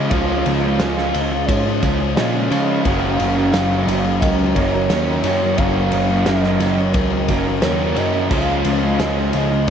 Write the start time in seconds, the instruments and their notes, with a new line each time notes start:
Already playing: distorted electric guitar C#3 G#3 C#4, clean electric guitar F3 G#3, overdriven electric guitar C#4 F4, soft synth lead D#5
0.09 picked electric bass C#2, overdriven electric guitar C#3 F3 G#3 C#4 F4, distorted electric guitar C#3 G#3, clean electric guitar F3, soft synth lead F5, kick, ride
0.14 distorted electric guitar C#4
0.46 picked electric bass C#2, distorted electric guitar C#3 G#3 C#4, clean electric guitar F3, ride
0.62 overdriven electric guitar G#3 C#4 F4, distorted electric guitar G#3 C#4
0.78 picked electric bass C#2, overdriven electric guitar C#3 F3 G#3 C#4 F4, distorted electric guitar C#3, clean electric guitar G#3, soft synth lead F5, snare, ride, tambourine
0.82 distorted electric guitar G#3 C#4
0.96 overdriven electric guitar G#3 C#4 F4, snare
1.13 picked electric bass C#2, distorted electric guitar C#3 G#3 C#4, overdriven electric guitar F3 G#3 C#4 F4, clean electric guitar F3, ride, tambourine
1.31 distorted electric guitar G#3 C#4, muted overdriven electric guitar stroke
1.45 picked electric bass G#2, clean electric guitar F3, soft synth lead C#5, kick, ride, tambourine
1.66 distorted electric guitar G#3 C#4
1.80 picked electric bass C#2, distorted electric guitar C#3 G#3, overdriven electric guitar F3 G#3, clean electric guitar G#3, soft synth lead C5, kick, ride
1.84 distorted electric guitar C#4, overdriven electric guitar C#4 F4, tambourine
2.00 muted overdriven electric guitar stroke
2.14 picked electric bass A#2, distorted electric guitar C#3 G#3, overdriven electric guitar C#3 F3, clean electric guitar F3, soft synth lead D#5, snare, ride, tambourine
2.18 overdriven electric guitar G#3 C#4 F4, distorted electric guitar C#4
2.35 distorted electric guitar G#3 C#4
2.51 picked electric bass C#3, distorted electric guitar C#3 G#3 C#4, overdriven electric guitar F3 G#3 C#4 F4, clean electric guitar F3, ride, tambourine
2.68 distorted electric guitar G#3 C#4, overdriven electric guitar G#3 C#4 F4
2.82 picked electric bass F#1, overdriven electric guitar F#2 C#3 F#3, distorted electric guitar F#2, clean electric guitar D#3, soft synth lead F5, kick, ride
2.87 distorted electric guitar C#3 F#3, overdriven electric guitar A#3 C#4 F#4
3.19 picked electric bass F#1, distorted electric guitar F#2 C#3 F#3, clean electric guitar D#3, ride
3.35 distorted electric guitar C#3 F#3, overdriven electric guitar A#3 C#4 F#4
3.40 overdriven electric guitar F#3
3.52 picked electric bass F#1, distorted electric guitar F#2 C#3 F#3, overdriven electric guitar F#2 C#3 F#3 A#3 C#4, clean electric guitar A#3, soft synth lead F5, snare, ride, tambourine
3.56 overdriven electric guitar F#4
3.71 overdriven electric guitar F#3 A#3 C#4 F#4
3.87 picked electric bass F#1, distorted electric guitar F#2 C#3 F#3, clean electric guitar D#3, overdriven electric guitar F#3 A#3 C#4 F#4, ride, tambourine
4.05 distorted electric guitar C#3 F#3, muted overdriven electric guitar stroke
4.20 picked electric bass C#2, clean electric guitar D#3, soft synth lead D#5, kick, ride, tambourine
4.39 distorted electric guitar C#3 F#3
4.54 picked electric bass F#1, distorted electric guitar F#2 C#3 F#3, overdriven electric guitar F#3 A#3, clean electric guitar A#3, soft synth lead C#5, kick, ride
4.59 overdriven electric guitar C#4 F#4
4.74 muted overdriven electric guitar stroke
4.87 picked electric bass D#2, distorted electric guitar F#2 C#3 F#3, overdriven electric guitar F#2, clean electric guitar D#3, soft synth lead C#5, snare, ride, tambourine
4.91 overdriven electric guitar C#3 F#3 A#3 C#4 F#4
5.05 distorted electric guitar C#3 F#3
5.23 distorted electric guitar F#2 C#3 F#3, picked electric bass F#2, clean electric guitar D#3, overdriven electric guitar F#3 A#3 C#4, ride, tambourine
5.27 overdriven electric guitar F#4
5.40 distorted electric guitar C#3 F#3, overdriven electric guitar A#3 C#4 F#4
5.46 overdriven electric guitar F#3
5.57 picked electric bass F#1, distorted electric guitar F#2 C#3 F#3, overdriven electric guitar F#2 C#3 F#3, clean electric guitar D#3, soft synth lead F5, kick, ride
5.61 overdriven electric guitar A#3 C#4 F#4
5.91 picked electric bass F#1, distorted electric guitar F#2 C#3 F#3, clean electric guitar D#3, ride, tambourine
6.08 distorted electric guitar C#3 F#3, overdriven electric guitar A#3 C#4 F#4
6.13 overdriven electric guitar F#3
6.25 picked electric bass F#1, distorted electric guitar F#2 C#3 F#3, overdriven electric guitar F#2 C#3 F#3 A#3, clean electric guitar A#3, soft synth lead D#5, snare, ride, tambourine
6.30 overdriven electric guitar C#4 F#4
6.44 overdriven electric guitar F#3 A#3 C#4 F#4, snare
6.59 picked electric bass F#1, distorted electric guitar F#2 C#3 F#3, clean electric guitar D#3, overdriven electric guitar F#3, ride, tambourine
6.64 overdriven electric guitar A#3 C#4 F#4
6.76 distorted electric guitar C#3 F#3, soft synth lead C#5
6.81 muted overdriven electric guitar stroke
6.93 picked electric bass C#2, clean electric guitar D#3, soft synth lead A#4, kick, ride, tambourine
7.10 distorted electric guitar C#3 F#3
7.28 picked electric bass F#1, distorted electric guitar F#2 C#3 F#3, overdriven electric guitar F#3 A#3, clean electric guitar A#3, kick, ride, tambourine
7.32 overdriven electric guitar C#4 F#4
7.48 muted overdriven electric guitar stroke
7.62 picked electric bass D#2, distorted electric guitar F#2 C#3 F#3, overdriven electric guitar F#2 C#3 F#3 A#3 C#4 F#4, clean electric guitar D#3, soft synth lead C#5, snare, ride, tambourine
7.80 distorted electric guitar C#3 F#3
7.96 distorted electric guitar F#2 C#3 F#3, picked electric bass F#2, clean electric guitar D#3, overdriven electric guitar F#3 A#3 C#4 F#4, soft synth lead D#5, ride, tambourine
8.13 distorted electric guitar C#3 F#3, overdriven electric guitar A#3 C#4 F#4
8.17 overdriven electric guitar F#3
8.29 picked electric bass C#2, distorted electric guitar C#3 G#3 C#4, overdriven electric guitar C#3 F3 G#3 C#4, clean electric guitar F3, soft synth lead F5, kick, crash
8.34 overdriven electric guitar F4
8.64 picked electric bass C#2, distorted electric guitar C#3 G#3 C#4, clean electric guitar F3, soft synth lead F5, ride
8.81 distorted electric guitar G#3 C#4, overdriven electric guitar C#4 F4
8.86 overdriven electric guitar G#3
8.98 picked electric bass C#2, distorted electric guitar C#3 G#3 C#4, overdriven electric guitar C#3 F3 G#3 C#4, clean electric guitar G#3, soft synth lead D#5, snare, ride, tambourine
9.03 overdriven electric guitar F4
9.17 overdriven electric guitar G#3 C#4 F4
9.33 picked electric bass C#2, distorted electric guitar C#3 G#3 C#4, overdriven electric guitar F3 G#3 C#4, clean electric guitar F3, ride, tambourine
9.37 overdriven electric guitar F4
9.50 distorted electric guitar G#3 C#4, muted overdriven electric guitar stroke
9.67 soft synth lead C#5